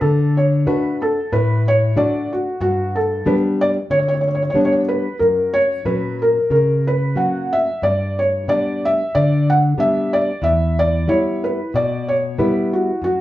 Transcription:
0.01 nylon-string guitar D3, felt piano A4
0.37 felt piano C#5
0.66 nylon-string guitar A3 D4 F#4, felt piano B4
1.02 felt piano A4
1.32 nylon-string guitar A2, felt piano B4
1.68 felt piano C#5
1.96 nylon-string guitar A3 D4 F#4, felt piano D5
2.33 felt piano F#4
2.61 nylon-string guitar G2, felt piano F#4
2.95 felt piano A4
3.26 nylon-string guitar G3 B3 D4, felt piano B4
3.61 felt piano D5
3.90 nylon-string guitar D3, felt piano C#5
3.99 felt piano C#5
4.08 felt piano C#5
4.14 felt piano C#5
4.21 felt piano C#5
4.28 felt piano C#5
4.35 felt piano C#5
4.43 felt piano C#5
4.50 felt piano C#5
4.54 nylon-string guitar G3 B3 D4, felt piano C#5
4.65 felt piano C#5
4.72 felt piano C#5
4.89 felt piano B4
5.19 nylon-string guitar F#2, felt piano A#4
5.54 felt piano C#5
5.85 nylon-string guitar A#2 F#3 C#4, felt piano B4
6.22 felt piano A#4
6.50 nylon-string guitar C#3, felt piano A#4
6.87 felt piano B4
7.15 nylon-string guitar F#3 A#3 C#4, felt piano F#5
7.53 felt piano E5
7.82 nylon-string guitar G2, felt piano D5
8.19 felt piano C#5
8.48 nylon-string guitar G3 B3 D4, felt piano D5
8.85 felt piano E5
9.15 nylon-string guitar D3, felt piano D5
9.50 felt piano F#5
9.78 nylon-string guitar G3 B3 D4, felt piano E5
10.13 felt piano D5
10.42 nylon-string guitar E2, felt piano E5
10.79 felt piano D5
11.07 nylon-string guitar G3 B3 E4, felt piano C#5
11.44 felt piano B4
11.74 nylon-string guitar B2, felt piano D5
12.08 felt piano C#5
12.38 nylon-string guitar G3 B3 E4, felt piano B4
12.73 felt piano F#4
13.02 nylon-string guitar F#2, felt piano F#4

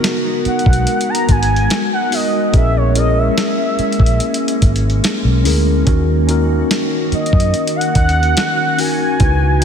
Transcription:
Already playing: ambient pad G#3 B3 F#4 A#4, tine electric piano B3 D#4 F#4 A#4
0.04 snare, closed hi-hat
0.45 soft synth lead F#5, muted fingered electric bass stroke, closed hi-hat
0.59 closed hi-hat
0.66 fingered electric bass B1, kick
0.73 closed hi-hat
0.87 closed hi-hat
1.01 closed hi-hat
1.10 soft synth lead A#5
1.15 closed hi-hat
1.29 fingered electric bass G#1, soft synth lead G#5, kick, closed hi-hat
1.43 closed hi-hat
1.56 closed hi-hat
1.70 snare, closed hi-hat
1.93 soft synth lead F#5
2.10 tine electric piano B3 D#4 F#4 A#4, soft synth lead D#5, open hi-hat
2.52 fingered electric bass A#1, ambient pad A#3 C#4, tine electric piano C#4 E4 G#4 A#4, soft synth lead E5, kick, closed hi-hat
2.77 soft synth lead C#5
2.94 tine electric piano C#4 E4 G#4 A#4, closed hi-hat
2.98 soft synth lead D#5
3.18 soft synth lead E5
3.38 snare, closed hi-hat
3.79 muted fingered electric bass stroke, closed hi-hat
3.92 closed hi-hat
4.00 fingered electric bass A#1, kick
4.06 closed hi-hat
4.20 closed hi-hat
4.34 closed hi-hat
4.48 closed hi-hat
4.62 fingered electric bass G#1, kick, closed hi-hat
4.76 closed hi-hat
4.90 closed hi-hat
5.04 snare, closed hi-hat
5.25 fingered electric bass B1
5.44 fingered electric bass D2, tine electric piano C#4 E4 G#4 A#4, open hi-hat
5.85 fingered electric bass D#2, ambient pad D#3 F#4, tine electric piano C#4 D#4 F#4 A#4, kick, closed hi-hat
6.27 tine electric piano C#4 D#4 F#4 A#4, closed hi-hat
6.71 snare, closed hi-hat
7.12 soft synth lead D#5, muted fingered electric bass stroke, closed hi-hat
7.26 closed hi-hat
7.33 fingered electric bass F#2, kick
7.40 closed hi-hat
7.54 closed hi-hat
7.67 closed hi-hat
7.76 soft synth lead F#5
7.81 closed hi-hat
7.95 fingered electric bass D#2, soft synth lead F#5, kick, closed hi-hat
8.09 closed hi-hat
8.23 closed hi-hat
8.37 snare, closed hi-hat
8.77 tine electric piano C#4 D#4 F#4 A#4, soft synth lead G#5, open hi-hat
9.19 fingered electric bass C#2, ambient pad C#3 E3 B3 D#5, tine electric piano D#4 E4 F#4 B4, kick, closed hi-hat
9.60 tine electric piano D#4

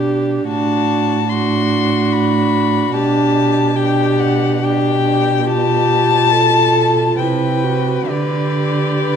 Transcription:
Already playing: cello B2, viola D4, violin G4
0.48 cello A2, viola D4, violin F#4 A5
1.29 viola D4, violin F#4 C6
2.13 violin B5
2.94 cello B2, viola D4, violin G4 A5
3.76 viola D4, violin G4 G5
4.20 violin F#5
4.62 viola D4, violin G4 G5
5.05 viola D4
5.47 viola F4, violin G4 A5
6.31 violin A4
7.18 cello C3, viola E4, violin B4 G5
7.63 viola F#4
8.10 cello D3, viola G4, violin B4 D5
9.02 violin B4

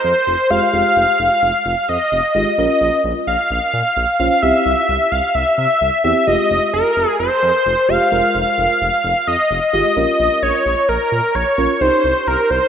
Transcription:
Already playing: analog synth lead C5
0.04 analog synth bass F2
0.27 analog synth bass F1
0.50 analog synth bass F1, fm electric piano G#3 F4 G4, analog synth lead F5
0.73 analog synth bass F1, fm electric piano G#3 F4 G4
0.96 analog synth bass F1
1.20 analog synth bass F1
1.43 analog synth bass F1
1.66 analog synth bass F1
1.82 analog synth lead F5
1.89 analog synth bass F2, analog synth lead D#5
2.12 analog synth bass F1
2.35 analog synth bass G#1, fm electric piano G#3 F4 G4, analog synth lead D#5
2.58 analog synth bass A#1, fm electric piano C#4 F4 A#4, analog synth lead D#5
2.81 analog synth bass A#1
3.04 analog synth bass A#1
3.27 analog synth bass A#1, analog synth lead F5
3.51 analog synth bass A#1
3.74 analog synth bass A#2
3.97 analog synth bass A#1
4.20 analog synth bass A#1, fm electric piano C#4 F4 C5, analog synth lead F5
4.43 analog synth bass C2, fm electric piano C4 E4 G4, analog synth lead E5
4.66 analog synth bass C2
4.89 analog synth bass C2
5.12 analog synth bass C2, analog synth lead F5
5.35 analog synth bass C2, analog synth lead E5
5.58 analog synth bass C3, analog synth lead E5
5.81 analog synth bass C2
6.04 analog synth bass E2, fm electric piano C4 E4 G4, analog synth lead E5
6.27 analog synth bass F1, fm electric piano G#3 F4 G4, analog synth lead D#5
6.50 analog synth bass F1
6.74 analog synth bass F1, analog synth lead A#4
6.97 analog synth bass F1
7.19 analog synth bass F1, analog synth lead C5
7.43 analog synth bass F2
7.66 analog synth bass F1
7.89 analog synth bass F1, fm electric piano G#3 F4 G4, analog synth lead F5
8.12 analog synth bass F1, fm electric piano G#3 F4 A#4
8.35 analog synth bass F1
8.58 analog synth bass F1
8.81 analog synth bass F1
9.04 analog synth bass F1
9.27 analog synth bass F2, analog synth lead D#5
9.51 analog synth bass F1
9.73 analog synth bass G#1, fm electric piano G#3 F4 G4, analog synth lead D#5
9.96 analog synth bass A#1, fm electric piano C#4 F4 A#4, analog synth lead D#5
10.20 analog synth bass A#1
10.43 analog synth bass A#1, analog synth lead C#5
10.66 analog synth bass A#1
10.89 analog synth bass A#1, analog synth lead A#4
11.12 analog synth bass A#2
11.35 analog synth bass A#1, analog synth lead C#5
11.58 analog synth bass A#1, fm electric piano C#4 F4 A#4
11.81 analog synth bass C2, fm electric piano D#4 G4 C5, analog synth lead C5
12.04 analog synth bass C2
12.27 analog synth bass C2, analog synth lead A#4
12.50 analog synth bass C2, analog synth lead C5

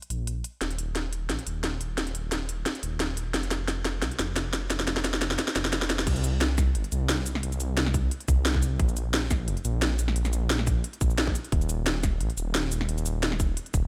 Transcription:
0.02 closed hi-hat
0.10 detuned saw bass A#1, closed hi-hat
0.27 closed hi-hat
0.44 closed hi-hat
0.61 detuned saw bass D#1, snare, closed hi-hat
0.71 closed hi-hat
0.78 closed hi-hat
0.95 snare, closed hi-hat
1.13 closed hi-hat
1.29 detuned saw bass A#1, snare, closed hi-hat
1.39 closed hi-hat
1.46 detuned saw bass D#1, closed hi-hat
1.64 snare, closed hi-hat
1.81 closed hi-hat
1.98 detuned saw bass D#1, snare, closed hi-hat
2.07 closed hi-hat
2.15 closed hi-hat
2.32 snare, closed hi-hat
2.49 closed hi-hat
2.66 snare, closed hi-hat
2.75 closed hi-hat
2.83 detuned saw bass D#1, closed hi-hat
3.00 snare, closed hi-hat
3.17 closed hi-hat
3.34 detuned saw bass F1, snare, closed hi-hat
3.43 closed hi-hat
3.51 snare, closed hi-hat
3.68 snare, closed hi-hat
3.85 snare, closed hi-hat
4.02 detuned saw bass C2, snare, closed hi-hat
4.11 closed hi-hat
4.19 detuned saw bass F1, snare, closed hi-hat
4.36 snare, closed hi-hat
4.53 snare, closed hi-hat
4.70 detuned saw bass F1, snare, closed hi-hat
4.80 snare, closed hi-hat
4.87 snare, closed hi-hat
4.97 snare
5.04 snare, closed hi-hat
5.14 snare
5.22 snare, closed hi-hat
5.31 snare
5.39 snare, closed hi-hat
5.48 snare, closed hi-hat
5.56 detuned saw bass F1, snare, closed hi-hat
5.65 snare
5.73 snare, closed hi-hat
5.82 snare
5.90 snare, closed hi-hat
5.99 snare, closed hi-hat
6.07 detuned saw bass C2, kick, closed hi-hat, crash
6.16 closed hi-hat, cabasa
6.24 closed hi-hat, cabasa
6.41 snare, closed hi-hat
6.58 kick, snare, closed hi-hat, cabasa
6.75 detuned saw bass G1, closed hi-hat
6.84 closed hi-hat
6.92 detuned saw bass C2, closed hi-hat, cabasa
7.09 snare, closed hi-hat
7.26 closed hi-hat, cabasa
7.35 snare
7.43 detuned saw bass C2, closed hi-hat
7.52 closed hi-hat, cabasa
7.60 closed hi-hat, cabasa
7.77 snare, closed hi-hat
7.86 snare
7.94 kick, closed hi-hat, cabasa
8.11 closed hi-hat
8.20 closed hi-hat
8.28 detuned saw bass C2, kick, closed hi-hat, cabasa
8.45 snare, closed hi-hat
8.55 kick, snare
8.62 closed hi-hat, cabasa
8.79 detuned saw bass A#1, kick, closed hi-hat
8.89 closed hi-hat, cabasa
8.97 closed hi-hat, cabasa
9.14 snare, closed hi-hat
9.31 kick, snare, closed hi-hat, cabasa
9.48 detuned saw bass F1, closed hi-hat
9.57 closed hi-hat
9.65 detuned saw bass A#1, closed hi-hat, cabasa
9.82 snare, closed hi-hat
9.99 closed hi-hat, cabasa
10.08 snare
10.16 detuned saw bass A#1, closed hi-hat
10.25 snare, closed hi-hat, cabasa
10.33 closed hi-hat, cabasa
10.50 snare, closed hi-hat
10.59 snare
10.67 kick, closed hi-hat, cabasa
10.84 closed hi-hat
10.93 closed hi-hat
11.01 detuned saw bass A#1, kick, closed hi-hat, cabasa
11.10 cabasa
11.18 snare, closed hi-hat
11.27 kick, snare
11.35 closed hi-hat, cabasa
11.44 closed hi-hat
11.52 detuned saw bass D#1, kick, closed hi-hat
11.61 closed hi-hat, cabasa
11.69 closed hi-hat, cabasa
11.86 snare, closed hi-hat
12.03 kick, snare, closed hi-hat, cabasa
12.20 detuned saw bass A#1, closed hi-hat
12.30 closed hi-hat
12.37 detuned saw bass D#1, closed hi-hat, cabasa
12.55 snare, closed hi-hat
12.72 closed hi-hat, cabasa
12.81 snare
12.89 detuned saw bass D#1, closed hi-hat
12.98 closed hi-hat, cabasa
13.06 closed hi-hat, cabasa
13.23 snare, closed hi-hat
13.32 snare
13.40 kick, closed hi-hat, cabasa
13.57 closed hi-hat
13.66 closed hi-hat
13.74 detuned saw bass D#1, kick, closed hi-hat, cabasa

